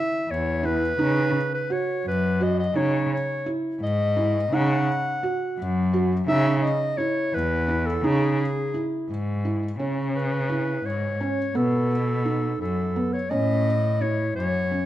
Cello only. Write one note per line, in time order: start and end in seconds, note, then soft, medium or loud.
0.29 0.95 E2 medium
0.99 1.32 C#3 loud
2.05 2.72 F#2 medium
2.75 3.09 C#3 medium
3.81 4.48 G#2 medium
4.52 4.85 C#3 loud
5.58 6.24 F#2 medium
6.28 6.61 C#3 loud
7.34 8.00 E2 medium
8.04 8.37 C#3 loud
9.09 9.76 G#2 medium
9.80 10.81 C#3 medium
10.85 11.18 G#2 medium
11.55 12.57 B2 medium
12.61 12.94 F#2 medium
13.31 14.33 A2 medium
14.37 14.70 F#2 medium